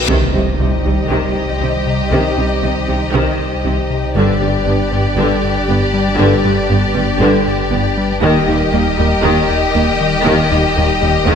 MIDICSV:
0, 0, Header, 1, 12, 480
1, 0, Start_track
1, 0, Key_signature, -3, "minor"
1, 0, Tempo, 508475
1, 85, Time_signature, 4, 2, 24, 8
1, 10714, End_track
2, 0, Start_track
2, 0, Title_t, "Violin section"
2, 0, Program_c, 0, 48
2, 84, Note_on_c, 0, 75, 62
2, 3887, Note_off_c, 0, 75, 0
2, 3923, Note_on_c, 0, 74, 79
2, 7727, Note_off_c, 0, 74, 0
2, 7765, Note_on_c, 0, 75, 93
2, 10714, Note_off_c, 0, 75, 0
2, 10714, End_track
3, 0, Start_track
3, 0, Title_t, "Violin section"
3, 0, Program_c, 1, 48
3, 101, Note_on_c, 1, 67, 76
3, 3895, Note_off_c, 1, 67, 0
3, 3928, Note_on_c, 1, 67, 94
3, 7729, Note_off_c, 1, 67, 0
3, 7768, Note_on_c, 1, 67, 111
3, 10714, Note_off_c, 1, 67, 0
3, 10714, End_track
4, 0, Start_track
4, 0, Title_t, "Analog synth pad"
4, 0, Program_c, 2, 89
4, 83, Note_on_c, 2, 55, 75
4, 86, Note_on_c, 2, 67, 85
4, 87, Note_on_c, 2, 63, 73
4, 88, Note_on_c, 2, 72, 85
4, 3886, Note_off_c, 2, 55, 0
4, 3888, Note_off_c, 2, 63, 0
4, 3888, Note_off_c, 2, 67, 0
4, 3889, Note_off_c, 2, 72, 0
4, 3918, Note_on_c, 2, 62, 81
4, 3921, Note_on_c, 2, 67, 90
4, 3921, Note_on_c, 2, 71, 80
4, 3924, Note_on_c, 2, 55, 83
4, 7725, Note_off_c, 2, 67, 0
4, 7727, Note_off_c, 2, 55, 0
4, 7757, Note_on_c, 2, 70, 88
4, 7759, Note_on_c, 2, 55, 90
4, 7759, Note_on_c, 2, 63, 91
4, 7760, Note_on_c, 2, 67, 84
4, 7762, Note_off_c, 2, 62, 0
4, 7763, Note_off_c, 2, 71, 0
4, 10714, Note_off_c, 2, 55, 0
4, 10714, Note_off_c, 2, 63, 0
4, 10714, Note_off_c, 2, 67, 0
4, 10714, Note_off_c, 2, 70, 0
4, 10714, End_track
5, 0, Start_track
5, 0, Title_t, "French horn section"
5, 0, Program_c, 3, 60
5, 83, Note_on_c, 3, 51, 65
5, 83, Note_on_c, 3, 67, 68
5, 251, Note_off_c, 3, 51, 0
5, 251, Note_off_c, 3, 67, 0
5, 1057, Note_on_c, 3, 67, 67
5, 1062, Note_on_c, 3, 51, 69
5, 1220, Note_off_c, 3, 67, 0
5, 1224, Note_off_c, 3, 51, 0
5, 2006, Note_on_c, 3, 67, 74
5, 2008, Note_on_c, 3, 51, 72
5, 2173, Note_off_c, 3, 67, 0
5, 2175, Note_off_c, 3, 51, 0
5, 2962, Note_on_c, 3, 67, 68
5, 2963, Note_on_c, 3, 51, 73
5, 3130, Note_off_c, 3, 67, 0
5, 3132, Note_off_c, 3, 51, 0
5, 3924, Note_on_c, 3, 50, 78
5, 3927, Note_on_c, 3, 71, 80
5, 4092, Note_off_c, 3, 50, 0
5, 4094, Note_off_c, 3, 71, 0
5, 4889, Note_on_c, 3, 71, 74
5, 4891, Note_on_c, 3, 50, 76
5, 5055, Note_off_c, 3, 71, 0
5, 5056, Note_off_c, 3, 50, 0
5, 5844, Note_on_c, 3, 50, 94
5, 5849, Note_on_c, 3, 71, 88
5, 6012, Note_off_c, 3, 50, 0
5, 6015, Note_off_c, 3, 71, 0
5, 6806, Note_on_c, 3, 71, 83
5, 6812, Note_on_c, 3, 50, 85
5, 6973, Note_off_c, 3, 71, 0
5, 6977, Note_off_c, 3, 50, 0
5, 7773, Note_on_c, 3, 67, 92
5, 7776, Note_on_c, 3, 51, 89
5, 7938, Note_off_c, 3, 67, 0
5, 7940, Note_off_c, 3, 51, 0
5, 8726, Note_on_c, 3, 67, 90
5, 8729, Note_on_c, 3, 51, 80
5, 8893, Note_off_c, 3, 67, 0
5, 8895, Note_off_c, 3, 51, 0
5, 9684, Note_on_c, 3, 51, 95
5, 9685, Note_on_c, 3, 67, 90
5, 9852, Note_off_c, 3, 51, 0
5, 9852, Note_off_c, 3, 67, 0
5, 10644, Note_on_c, 3, 51, 83
5, 10647, Note_on_c, 3, 67, 81
5, 10714, Note_off_c, 3, 51, 0
5, 10714, Note_off_c, 3, 67, 0
5, 10714, End_track
6, 0, Start_track
6, 0, Title_t, "Synth pluck"
6, 0, Program_c, 4, 84
6, 83, Note_on_c, 4, 48, 93
6, 227, Note_off_c, 4, 48, 0
6, 321, Note_on_c, 4, 60, 66
6, 466, Note_off_c, 4, 60, 0
6, 560, Note_on_c, 4, 51, 68
6, 706, Note_off_c, 4, 51, 0
6, 801, Note_on_c, 4, 51, 64
6, 946, Note_off_c, 4, 51, 0
6, 1042, Note_on_c, 4, 48, 86
6, 1187, Note_off_c, 4, 48, 0
6, 1523, Note_on_c, 4, 51, 72
6, 1668, Note_off_c, 4, 51, 0
6, 2000, Note_on_c, 4, 48, 99
6, 2145, Note_off_c, 4, 48, 0
6, 2246, Note_on_c, 4, 60, 68
6, 2389, Note_off_c, 4, 60, 0
6, 2483, Note_on_c, 4, 51, 73
6, 2628, Note_off_c, 4, 51, 0
6, 2722, Note_on_c, 4, 51, 63
6, 2867, Note_off_c, 4, 51, 0
6, 2963, Note_on_c, 4, 48, 81
6, 3108, Note_off_c, 4, 48, 0
6, 3444, Note_on_c, 4, 51, 74
6, 3588, Note_off_c, 4, 51, 0
6, 3927, Note_on_c, 4, 55, 100
6, 4070, Note_off_c, 4, 55, 0
6, 4165, Note_on_c, 4, 67, 75
6, 4309, Note_off_c, 4, 67, 0
6, 4406, Note_on_c, 4, 59, 69
6, 4550, Note_off_c, 4, 59, 0
6, 4645, Note_on_c, 4, 59, 66
6, 4789, Note_off_c, 4, 59, 0
6, 4880, Note_on_c, 4, 55, 86
6, 5025, Note_off_c, 4, 55, 0
6, 5364, Note_on_c, 4, 59, 72
6, 5509, Note_off_c, 4, 59, 0
6, 5843, Note_on_c, 4, 55, 111
6, 5987, Note_off_c, 4, 55, 0
6, 6081, Note_on_c, 4, 67, 71
6, 6226, Note_off_c, 4, 67, 0
6, 6316, Note_on_c, 4, 59, 70
6, 6463, Note_off_c, 4, 59, 0
6, 6556, Note_on_c, 4, 59, 67
6, 6703, Note_off_c, 4, 59, 0
6, 6796, Note_on_c, 4, 55, 101
6, 6943, Note_off_c, 4, 55, 0
6, 7276, Note_on_c, 4, 59, 73
6, 7423, Note_off_c, 4, 59, 0
6, 7757, Note_on_c, 4, 51, 105
6, 7903, Note_off_c, 4, 51, 0
6, 8002, Note_on_c, 4, 63, 77
6, 8147, Note_off_c, 4, 63, 0
6, 8242, Note_on_c, 4, 55, 73
6, 8387, Note_off_c, 4, 55, 0
6, 8484, Note_on_c, 4, 55, 67
6, 8628, Note_off_c, 4, 55, 0
6, 8722, Note_on_c, 4, 51, 93
6, 8867, Note_off_c, 4, 51, 0
6, 9203, Note_on_c, 4, 55, 77
6, 9348, Note_off_c, 4, 55, 0
6, 9685, Note_on_c, 4, 51, 119
6, 9829, Note_off_c, 4, 51, 0
6, 9928, Note_on_c, 4, 63, 79
6, 10071, Note_off_c, 4, 63, 0
6, 10170, Note_on_c, 4, 55, 76
6, 10313, Note_off_c, 4, 55, 0
6, 10406, Note_on_c, 4, 55, 78
6, 10550, Note_off_c, 4, 55, 0
6, 10640, Note_on_c, 4, 51, 91
6, 10714, Note_off_c, 4, 51, 0
6, 10714, End_track
7, 0, Start_track
7, 0, Title_t, "Viola section"
7, 0, Program_c, 5, 48
7, 82, Note_on_c, 5, 51, 72
7, 307, Note_off_c, 5, 51, 0
7, 323, Note_on_c, 5, 55, 54
7, 399, Note_off_c, 5, 55, 0
7, 566, Note_on_c, 5, 60, 54
7, 641, Note_off_c, 5, 60, 0
7, 807, Note_on_c, 5, 55, 62
7, 882, Note_off_c, 5, 55, 0
7, 1044, Note_on_c, 5, 51, 73
7, 1268, Note_off_c, 5, 51, 0
7, 1523, Note_on_c, 5, 60, 61
7, 1599, Note_off_c, 5, 60, 0
7, 2006, Note_on_c, 5, 51, 71
7, 2229, Note_off_c, 5, 51, 0
7, 2251, Note_on_c, 5, 55, 50
7, 2327, Note_off_c, 5, 55, 0
7, 2493, Note_on_c, 5, 60, 52
7, 2568, Note_off_c, 5, 60, 0
7, 2731, Note_on_c, 5, 55, 63
7, 2806, Note_off_c, 5, 55, 0
7, 2964, Note_on_c, 5, 51, 84
7, 3188, Note_off_c, 5, 51, 0
7, 3454, Note_on_c, 5, 60, 61
7, 3529, Note_off_c, 5, 60, 0
7, 3929, Note_on_c, 5, 50, 81
7, 4150, Note_off_c, 5, 50, 0
7, 4178, Note_on_c, 5, 55, 62
7, 4253, Note_off_c, 5, 55, 0
7, 4422, Note_on_c, 5, 59, 67
7, 4497, Note_off_c, 5, 59, 0
7, 4653, Note_on_c, 5, 55, 62
7, 4728, Note_off_c, 5, 55, 0
7, 4892, Note_on_c, 5, 50, 88
7, 5112, Note_off_c, 5, 50, 0
7, 5373, Note_on_c, 5, 59, 72
7, 5448, Note_off_c, 5, 59, 0
7, 5842, Note_on_c, 5, 50, 96
7, 6067, Note_off_c, 5, 50, 0
7, 6085, Note_on_c, 5, 55, 69
7, 6160, Note_off_c, 5, 55, 0
7, 6326, Note_on_c, 5, 59, 63
7, 6402, Note_off_c, 5, 59, 0
7, 6567, Note_on_c, 5, 55, 88
7, 6642, Note_off_c, 5, 55, 0
7, 6806, Note_on_c, 5, 50, 95
7, 7029, Note_off_c, 5, 50, 0
7, 7283, Note_on_c, 5, 59, 75
7, 7358, Note_off_c, 5, 59, 0
7, 7760, Note_on_c, 5, 51, 98
7, 7986, Note_off_c, 5, 51, 0
7, 7999, Note_on_c, 5, 55, 76
7, 8075, Note_off_c, 5, 55, 0
7, 8238, Note_on_c, 5, 58, 77
7, 8313, Note_off_c, 5, 58, 0
7, 8476, Note_on_c, 5, 55, 86
7, 8552, Note_off_c, 5, 55, 0
7, 8713, Note_on_c, 5, 51, 98
7, 8942, Note_off_c, 5, 51, 0
7, 9204, Note_on_c, 5, 58, 73
7, 9279, Note_off_c, 5, 58, 0
7, 9681, Note_on_c, 5, 51, 93
7, 9906, Note_off_c, 5, 51, 0
7, 9921, Note_on_c, 5, 55, 62
7, 9997, Note_off_c, 5, 55, 0
7, 10163, Note_on_c, 5, 58, 74
7, 10238, Note_off_c, 5, 58, 0
7, 10398, Note_on_c, 5, 55, 75
7, 10474, Note_off_c, 5, 55, 0
7, 10646, Note_on_c, 5, 51, 90
7, 10714, Note_off_c, 5, 51, 0
7, 10714, End_track
8, 0, Start_track
8, 0, Title_t, "Cello section"
8, 0, Program_c, 6, 48
8, 85, Note_on_c, 6, 48, 74
8, 160, Note_off_c, 6, 48, 0
8, 325, Note_on_c, 6, 48, 53
8, 400, Note_off_c, 6, 48, 0
8, 570, Note_on_c, 6, 48, 54
8, 645, Note_off_c, 6, 48, 0
8, 809, Note_on_c, 6, 48, 48
8, 884, Note_off_c, 6, 48, 0
8, 1046, Note_on_c, 6, 48, 73
8, 1122, Note_off_c, 6, 48, 0
8, 1529, Note_on_c, 6, 48, 51
8, 1604, Note_off_c, 6, 48, 0
8, 2005, Note_on_c, 6, 48, 82
8, 2081, Note_off_c, 6, 48, 0
8, 2249, Note_on_c, 6, 48, 62
8, 2324, Note_off_c, 6, 48, 0
8, 2487, Note_on_c, 6, 48, 63
8, 2563, Note_off_c, 6, 48, 0
8, 2726, Note_on_c, 6, 48, 58
8, 2802, Note_off_c, 6, 48, 0
8, 2962, Note_on_c, 6, 48, 87
8, 3037, Note_off_c, 6, 48, 0
8, 3449, Note_on_c, 6, 48, 58
8, 3524, Note_off_c, 6, 48, 0
8, 3928, Note_on_c, 6, 43, 86
8, 4004, Note_off_c, 6, 43, 0
8, 4170, Note_on_c, 6, 43, 62
8, 4245, Note_off_c, 6, 43, 0
8, 4408, Note_on_c, 6, 43, 67
8, 4483, Note_off_c, 6, 43, 0
8, 4641, Note_on_c, 6, 43, 60
8, 4717, Note_off_c, 6, 43, 0
8, 4886, Note_on_c, 6, 43, 90
8, 4961, Note_off_c, 6, 43, 0
8, 5368, Note_on_c, 6, 43, 61
8, 5444, Note_off_c, 6, 43, 0
8, 5845, Note_on_c, 6, 43, 94
8, 5921, Note_off_c, 6, 43, 0
8, 6085, Note_on_c, 6, 43, 76
8, 6160, Note_off_c, 6, 43, 0
8, 6322, Note_on_c, 6, 43, 74
8, 6398, Note_off_c, 6, 43, 0
8, 6564, Note_on_c, 6, 43, 66
8, 6640, Note_off_c, 6, 43, 0
8, 6807, Note_on_c, 6, 43, 99
8, 6882, Note_off_c, 6, 43, 0
8, 7279, Note_on_c, 6, 43, 67
8, 7354, Note_off_c, 6, 43, 0
8, 7758, Note_on_c, 6, 39, 100
8, 7834, Note_off_c, 6, 39, 0
8, 8003, Note_on_c, 6, 39, 75
8, 8079, Note_off_c, 6, 39, 0
8, 8242, Note_on_c, 6, 39, 72
8, 8317, Note_off_c, 6, 39, 0
8, 8481, Note_on_c, 6, 39, 66
8, 8556, Note_off_c, 6, 39, 0
8, 8715, Note_on_c, 6, 39, 104
8, 8791, Note_off_c, 6, 39, 0
8, 9206, Note_on_c, 6, 39, 69
8, 9281, Note_off_c, 6, 39, 0
8, 9687, Note_on_c, 6, 39, 105
8, 9763, Note_off_c, 6, 39, 0
8, 9922, Note_on_c, 6, 39, 73
8, 9997, Note_off_c, 6, 39, 0
8, 10165, Note_on_c, 6, 39, 77
8, 10240, Note_off_c, 6, 39, 0
8, 10402, Note_on_c, 6, 39, 70
8, 10477, Note_off_c, 6, 39, 0
8, 10637, Note_on_c, 6, 39, 102
8, 10712, Note_off_c, 6, 39, 0
8, 10714, End_track
9, 0, Start_track
9, 0, Title_t, "Analog synth bass"
9, 0, Program_c, 7, 38
9, 79, Note_on_c, 7, 36, 103
9, 225, Note_off_c, 7, 36, 0
9, 325, Note_on_c, 7, 36, 64
9, 469, Note_off_c, 7, 36, 0
9, 563, Note_on_c, 7, 36, 62
9, 708, Note_off_c, 7, 36, 0
9, 806, Note_on_c, 7, 36, 69
9, 950, Note_off_c, 7, 36, 0
9, 1040, Note_on_c, 7, 36, 96
9, 1186, Note_off_c, 7, 36, 0
9, 1275, Note_on_c, 7, 36, 67
9, 1422, Note_off_c, 7, 36, 0
9, 1514, Note_on_c, 7, 36, 72
9, 1662, Note_off_c, 7, 36, 0
9, 1763, Note_on_c, 7, 48, 69
9, 1908, Note_off_c, 7, 48, 0
9, 1992, Note_on_c, 7, 36, 102
9, 2140, Note_off_c, 7, 36, 0
9, 2243, Note_on_c, 7, 36, 67
9, 2388, Note_off_c, 7, 36, 0
9, 2484, Note_on_c, 7, 36, 68
9, 2628, Note_off_c, 7, 36, 0
9, 2728, Note_on_c, 7, 36, 75
9, 2872, Note_off_c, 7, 36, 0
9, 2968, Note_on_c, 7, 36, 100
9, 3111, Note_off_c, 7, 36, 0
9, 3205, Note_on_c, 7, 36, 63
9, 3349, Note_off_c, 7, 36, 0
9, 3442, Note_on_c, 7, 36, 74
9, 3587, Note_off_c, 7, 36, 0
9, 3684, Note_on_c, 7, 48, 69
9, 3828, Note_off_c, 7, 48, 0
9, 3921, Note_on_c, 7, 43, 97
9, 4066, Note_off_c, 7, 43, 0
9, 4168, Note_on_c, 7, 43, 71
9, 4311, Note_off_c, 7, 43, 0
9, 4411, Note_on_c, 7, 43, 62
9, 4554, Note_off_c, 7, 43, 0
9, 4651, Note_on_c, 7, 43, 72
9, 4793, Note_off_c, 7, 43, 0
9, 4897, Note_on_c, 7, 43, 94
9, 5037, Note_off_c, 7, 43, 0
9, 5135, Note_on_c, 7, 43, 69
9, 5276, Note_off_c, 7, 43, 0
9, 5371, Note_on_c, 7, 43, 74
9, 5513, Note_off_c, 7, 43, 0
9, 5604, Note_on_c, 7, 55, 74
9, 5749, Note_off_c, 7, 55, 0
9, 5840, Note_on_c, 7, 43, 115
9, 5985, Note_off_c, 7, 43, 0
9, 6088, Note_on_c, 7, 43, 77
9, 6231, Note_off_c, 7, 43, 0
9, 6327, Note_on_c, 7, 43, 72
9, 6471, Note_off_c, 7, 43, 0
9, 6572, Note_on_c, 7, 43, 77
9, 6714, Note_off_c, 7, 43, 0
9, 6806, Note_on_c, 7, 43, 101
9, 6950, Note_off_c, 7, 43, 0
9, 7052, Note_on_c, 7, 43, 73
9, 7194, Note_off_c, 7, 43, 0
9, 7292, Note_on_c, 7, 43, 85
9, 7434, Note_off_c, 7, 43, 0
9, 7528, Note_on_c, 7, 55, 76
9, 7671, Note_off_c, 7, 55, 0
9, 7768, Note_on_c, 7, 39, 103
9, 7911, Note_off_c, 7, 39, 0
9, 8004, Note_on_c, 7, 39, 82
9, 8148, Note_off_c, 7, 39, 0
9, 8246, Note_on_c, 7, 39, 75
9, 8390, Note_off_c, 7, 39, 0
9, 8489, Note_on_c, 7, 39, 75
9, 8632, Note_off_c, 7, 39, 0
9, 8729, Note_on_c, 7, 39, 106
9, 8872, Note_off_c, 7, 39, 0
9, 8970, Note_on_c, 7, 39, 68
9, 9113, Note_off_c, 7, 39, 0
9, 9209, Note_on_c, 7, 39, 77
9, 9352, Note_off_c, 7, 39, 0
9, 9447, Note_on_c, 7, 51, 78
9, 9591, Note_off_c, 7, 51, 0
9, 9682, Note_on_c, 7, 39, 118
9, 9827, Note_off_c, 7, 39, 0
9, 9925, Note_on_c, 7, 39, 78
9, 10069, Note_off_c, 7, 39, 0
9, 10168, Note_on_c, 7, 39, 76
9, 10311, Note_off_c, 7, 39, 0
9, 10405, Note_on_c, 7, 39, 74
9, 10549, Note_off_c, 7, 39, 0
9, 10645, Note_on_c, 7, 39, 109
9, 10714, Note_off_c, 7, 39, 0
9, 10714, End_track
10, 0, Start_track
10, 0, Title_t, "Double bass section"
10, 0, Program_c, 8, 48
10, 77, Note_on_c, 8, 36, 75
10, 152, Note_off_c, 8, 36, 0
10, 320, Note_on_c, 8, 36, 52
10, 395, Note_off_c, 8, 36, 0
10, 563, Note_on_c, 8, 36, 58
10, 638, Note_off_c, 8, 36, 0
10, 802, Note_on_c, 8, 36, 55
10, 878, Note_off_c, 8, 36, 0
10, 1042, Note_on_c, 8, 36, 76
10, 1118, Note_off_c, 8, 36, 0
10, 1518, Note_on_c, 8, 36, 59
10, 1594, Note_off_c, 8, 36, 0
10, 1998, Note_on_c, 8, 36, 78
10, 2074, Note_off_c, 8, 36, 0
10, 2242, Note_on_c, 8, 36, 61
10, 2317, Note_off_c, 8, 36, 0
10, 2480, Note_on_c, 8, 36, 60
10, 2556, Note_off_c, 8, 36, 0
10, 2716, Note_on_c, 8, 36, 60
10, 2792, Note_off_c, 8, 36, 0
10, 2964, Note_on_c, 8, 36, 83
10, 3039, Note_off_c, 8, 36, 0
10, 3440, Note_on_c, 8, 36, 59
10, 3515, Note_off_c, 8, 36, 0
10, 3920, Note_on_c, 8, 31, 87
10, 3995, Note_off_c, 8, 31, 0
10, 4161, Note_on_c, 8, 31, 68
10, 4236, Note_off_c, 8, 31, 0
10, 4400, Note_on_c, 8, 31, 69
10, 4476, Note_off_c, 8, 31, 0
10, 4637, Note_on_c, 8, 31, 64
10, 4713, Note_off_c, 8, 31, 0
10, 4879, Note_on_c, 8, 31, 94
10, 4954, Note_off_c, 8, 31, 0
10, 5362, Note_on_c, 8, 31, 67
10, 5437, Note_off_c, 8, 31, 0
10, 5839, Note_on_c, 8, 31, 102
10, 5915, Note_off_c, 8, 31, 0
10, 6077, Note_on_c, 8, 31, 67
10, 6152, Note_off_c, 8, 31, 0
10, 6319, Note_on_c, 8, 31, 68
10, 6395, Note_off_c, 8, 31, 0
10, 6557, Note_on_c, 8, 31, 74
10, 6632, Note_off_c, 8, 31, 0
10, 6796, Note_on_c, 8, 31, 106
10, 6872, Note_off_c, 8, 31, 0
10, 7279, Note_on_c, 8, 31, 82
10, 7354, Note_off_c, 8, 31, 0
10, 7759, Note_on_c, 8, 39, 113
10, 7834, Note_off_c, 8, 39, 0
10, 7997, Note_on_c, 8, 39, 81
10, 8073, Note_off_c, 8, 39, 0
10, 8237, Note_on_c, 8, 39, 74
10, 8313, Note_off_c, 8, 39, 0
10, 8480, Note_on_c, 8, 39, 66
10, 8555, Note_off_c, 8, 39, 0
10, 8722, Note_on_c, 8, 39, 109
10, 8798, Note_off_c, 8, 39, 0
10, 9199, Note_on_c, 8, 39, 80
10, 9274, Note_off_c, 8, 39, 0
10, 9682, Note_on_c, 8, 39, 105
10, 9757, Note_off_c, 8, 39, 0
10, 9925, Note_on_c, 8, 39, 70
10, 10000, Note_off_c, 8, 39, 0
10, 10158, Note_on_c, 8, 39, 78
10, 10234, Note_off_c, 8, 39, 0
10, 10400, Note_on_c, 8, 39, 74
10, 10476, Note_off_c, 8, 39, 0
10, 10639, Note_on_c, 8, 39, 106
10, 10714, Note_off_c, 8, 39, 0
10, 10714, End_track
11, 0, Start_track
11, 0, Title_t, "Sub bass"
11, 0, Program_c, 10, 38
11, 84, Note_on_c, 10, 36, 74
11, 3922, Note_on_c, 10, 31, 79
11, 3937, Note_off_c, 10, 36, 0
11, 7751, Note_on_c, 10, 27, 76
11, 7766, Note_off_c, 10, 31, 0
11, 10714, Note_off_c, 10, 27, 0
11, 10714, End_track
12, 0, Start_track
12, 0, Title_t, "Impact"
12, 0, Program_c, 11, 103
12, 85, Note_on_c, 11, 60, 73
12, 2005, Note_off_c, 11, 60, 0
12, 10714, End_track
0, 0, End_of_file